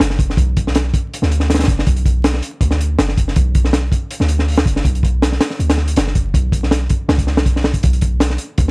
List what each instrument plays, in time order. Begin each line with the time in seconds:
0.00 808-style bass F#1, snare, closed hi-hat
0.10 snare
0.19 kick, closed hi-hat
0.30 snare
0.37 808-style bass B1, kick, closed hi-hat
0.57 kick, closed hi-hat
0.67 snare
0.75 snare, closed hi-hat
0.94 kick, closed hi-hat
1.14 closed hi-hat
1.22 808-style bass D2, snare
1.32 closed hi-hat
1.40 snare
1.50 snare, closed hi-hat
1.54 snare, closed hi-hat
1.59 snare, closed hi-hat
1.63 snare, closed hi-hat
1.68 808-style bass F#1, kick, closed hi-hat
1.79 snare
1.87 808-style bass B1, kick, closed hi-hat
1.96 closed hi-hat
2.06 kick, closed hi-hat
2.24 snare, closed hi-hat
2.34 snare
2.43 closed hi-hat
2.61 808-style bass D2, kick, closed hi-hat
2.71 snare
2.81 closed hi-hat
2.98 808-style bass F#1, snare, closed hi-hat
3.09 snare
3.17 kick, closed hi-hat
3.28 snare
3.36 808-style bass B1, kick, closed hi-hat
3.55 kick, closed hi-hat
3.65 snare
3.73 snare, closed hi-hat
3.92 kick, closed hi-hat
4.11 closed hi-hat
4.20 808-style bass D2, snare
4.29 closed hi-hat
4.39 snare
4.48 open hi-hat
4.58 snare
4.66 808-style bass F#1, kick, closed hi-hat
4.76 snare
4.85 808-style bass B1, kick, closed hi-hat
4.95 closed hi-hat
5.03 kick, closed hi-hat
5.22 snare, closed hi-hat
5.32 snare
5.41 snare, closed hi-hat
5.50 snare
5.59 808-style bass D2, closed hi-hat
5.70 snare, closed hi-hat
5.78 snare
5.88 closed hi-hat
5.96 808-style bass F#1, snare, closed hi-hat
6.07 snare
6.15 kick, closed hi-hat
6.34 808-style bass B1, kick, closed hi-hat
6.52 kick, closed hi-hat
6.63 snare
6.71 snare, closed hi-hat
6.89 kick, closed hi-hat
7.09 808-style bass C#2, snare
7.18 kick, closed hi-hat
7.27 snare
7.37 808-style bass B1, snare
7.46 kick, closed hi-hat
7.56 snare
7.64 snare
7.74 kick, closed hi-hat
7.83 808-style bass B1, kick, closed hi-hat
7.93 closed hi-hat
8.01 kick, closed hi-hat
8.20 snare, closed hi-hat
8.30 snare
8.38 closed hi-hat
8.58 808-style bass D2, kick, closed hi-hat